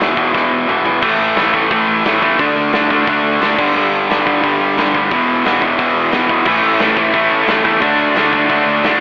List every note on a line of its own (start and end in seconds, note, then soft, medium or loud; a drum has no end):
0.00 0.14 E1 medium
0.00 0.16 E2 medium
0.00 0.15 B2 medium
0.00 0.16 E3 medium
0.00 snare loud
0.00 open hi-hat medium
0.17 0.31 E1 medium
0.17 0.32 E2 medium
0.17 0.33 B2 medium
0.17 0.33 E3 medium
0.17 kick medium
0.33 0.48 E1 loud
0.33 0.67 E2 medium
0.33 0.67 B2 loud
0.33 0.68 E3 loud
0.33 kick loud
0.33 snare medium
0.51 0.65 E1 medium
0.68 0.82 E1 medium
0.68 0.85 E2 medium
0.68 0.85 B2 medium
0.68 0.84 E3 medium
0.68 mid tom medium
0.84 0.99 B1 medium
0.84 1.02 E2 medium
0.84 1.01 B2 medium
0.84 1.01 E3 loud
0.84 floor tom medium
1.01 1.16 A1 medium
1.01 1.36 A2 loud
1.01 1.36 E3 loud
1.01 1.37 A3 loud
1.01 kick loud
1.01 crash medium
1.19 1.33 A1 medium
1.36 1.50 A1 medium
1.36 1.54 A2 medium
1.36 1.53 E3 medium
1.36 1.53 A3 medium
1.36 snare loud
1.36 open hi-hat medium
1.54 1.68 A1 medium
1.54 1.70 A2 medium
1.54 1.70 E3 medium
1.54 1.71 A3 medium
1.54 kick medium
1.71 1.85 A1 loud
1.71 2.04 A2 loud
1.71 2.04 E3 loud
1.71 2.05 A3 loud
1.71 kick loud
1.71 open hi-hat medium
1.87 2.02 A1 loud
2.05 2.19 A1 medium
2.05 2.22 A2 medium
2.05 2.22 E3 medium
2.05 2.21 A3 medium
2.05 snare loud
2.05 open hi-hat medium
2.22 2.36 E2 medium
2.22 2.39 A2 medium
2.22 2.39 E3 medium
2.22 2.38 A3 loud
2.22 kick medium
2.39 2.53 D2 medium
2.39 2.72 D3 loud
2.39 2.73 A3 loud
2.39 2.74 D4 loud
2.39 kick loud
2.39 open hi-hat medium
2.56 2.70 D2 medium
2.72 2.87 D2 medium
2.72 2.91 D3 medium
2.72 2.90 A3 loud
2.72 2.91 D4 medium
2.72 snare loud
2.72 open hi-hat medium
2.90 3.04 D2 medium
2.90 3.08 D3 medium
2.90 3.08 A3 medium
2.90 3.09 D4 medium
2.90 kick medium
3.07 3.21 D2 medium
3.07 3.40 D3 medium
3.07 3.41 A3 medium
3.07 3.42 D4 loud
3.07 kick loud
3.07 open hi-hat medium
3.23 3.37 D2 medium
3.41 3.55 D2 medium
3.41 3.57 D3 medium
3.41 3.58 A3 medium
3.41 3.58 D4 medium
3.41 snare loud
3.41 open hi-hat medium
3.58 3.73 G1 medium
3.58 3.76 G2 loud
3.58 3.76 D3 loud
3.58 3.75 G3 loud
3.58 kick loud
3.58 crash medium
3.75 3.89 G1 medium
3.75 4.11 G2 loud
3.75 4.10 D3 loud
3.75 4.10 G3 loud
3.92 4.06 G1 medium
4.09 4.23 G1 medium
4.09 4.25 G2 medium
4.09 4.26 D3 medium
4.09 4.25 G3 medium
4.09 snare loud
4.09 open hi-hat medium
4.26 4.40 G1 loud
4.26 4.42 G2 medium
4.26 4.41 D3 medium
4.26 4.41 G3 medium
4.26 kick medium
4.42 4.58 G1 medium
4.42 4.78 G2 medium
4.42 4.77 D3 medium
4.42 4.77 G3 loud
4.42 kick loud
4.42 open hi-hat medium
4.59 4.74 G1 medium
4.77 4.91 G1 medium
4.77 4.94 G2 medium
4.77 4.94 D3 medium
4.77 4.94 G3 medium
4.77 snare loud
4.77 open hi-hat medium
4.94 5.08 D2 medium
4.94 5.11 G2 medium
4.94 5.11 D3 medium
4.94 5.11 G3 loud
4.94 kick medium
5.11 5.25 E1 medium
5.11 5.45 E2 medium
5.11 5.45 B2 loud
5.11 5.46 E3 loud
5.11 kick loud
5.11 open hi-hat medium
5.26 5.41 E1 medium
5.44 5.59 E1 medium
5.44 5.62 E2 medium
5.44 5.62 B2 medium
5.44 5.62 E3 medium
5.44 snare loud
5.44 open hi-hat medium
5.61 5.76 E1 medium
5.61 5.77 E2 medium
5.61 5.77 B2 medium
5.61 5.78 E3 medium
5.61 kick medium
5.78 5.93 E1 loud
5.78 6.11 E2 loud
5.78 6.11 B2 medium
5.78 6.11 E3 loud
5.78 kick loud
5.78 open hi-hat medium
5.95 6.10 E1 medium
6.12 6.26 E1 medium
6.12 6.29 E2 medium
6.12 6.29 B2 medium
6.12 6.29 E3 loud
6.12 snare loud
6.12 open hi-hat medium
6.29 6.43 B1 medium
6.29 6.46 E2 medium
6.29 6.46 B2 medium
6.29 6.46 E3 medium
6.29 kick medium
6.45 6.60 A1 medium
6.45 6.80 A2 loud
6.45 6.81 E3 loud
6.45 6.81 A3 loud
6.45 6.79 C#4 medium
6.45 6.80 E4 medium
6.45 kick loud
6.45 crash medium
6.62 6.77 A1 medium
6.79 6.94 A1 medium
6.79 6.97 A2 medium
6.79 6.97 E3 medium
6.79 6.96 A3 medium
6.79 6.95 C#4 medium
6.79 6.96 E4 medium
6.79 snare loud
6.79 open hi-hat medium
6.96 7.11 A1 medium
6.96 7.12 A2 medium
6.96 7.13 E3 medium
6.96 7.13 A3 medium
6.96 7.14 C#4 medium
6.96 7.14 E4 medium
6.96 kick medium
7.13 7.28 A1 medium
7.13 7.46 A2 medium
7.13 7.47 E3 loud
7.13 7.47 A3 loud
7.13 7.47 C#4 loud
7.13 7.47 E4 loud
7.13 kick loud
7.13 open hi-hat medium
7.31 7.45 A1 medium
7.46 7.61 A1 medium
7.46 7.64 A2 medium
7.46 7.64 E3 medium
7.46 7.63 A3 medium
7.46 7.62 C#4 medium
7.46 7.62 E4 medium
7.46 snare loud
7.46 open hi-hat medium
7.63 7.82 E2 medium
7.63 7.81 A2 medium
7.63 7.81 E3 medium
7.63 7.80 A3 medium
7.63 7.80 C#4 medium
7.63 7.80 E4 medium
7.63 kick medium
7.81 7.96 D2 medium
7.81 8.14 D3 loud
7.81 8.15 F#3 medium
7.81 8.15 A3 loud
7.81 8.16 D4 loud
7.81 kick loud
7.81 open hi-hat medium
7.97 8.12 D2 medium
8.15 8.29 D2 medium
8.15 8.33 D3 medium
8.15 8.31 F#3 medium
8.15 8.32 A3 medium
8.15 8.33 D4 medium
8.15 snare loud
8.15 open hi-hat medium
8.33 8.47 D2 medium
8.33 8.47 D3 medium
8.33 8.49 F#3 medium
8.33 8.48 A3 medium
8.33 8.48 D4 medium
8.33 kick medium
8.49 8.64 D2 medium
8.49 8.83 D3 medium
8.49 8.83 F#3 medium
8.49 8.84 A3 medium
8.49 8.84 D4 loud
8.49 kick loud
8.49 open hi-hat medium
8.66 8.81 D2 medium
8.83 8.98 D2 medium
8.83 9.00 D3 medium
8.83 9.00 F#3 medium
8.83 9.00 A3 medium
8.83 9.00 D4 loud
8.83 snare loud
8.83 open hi-hat medium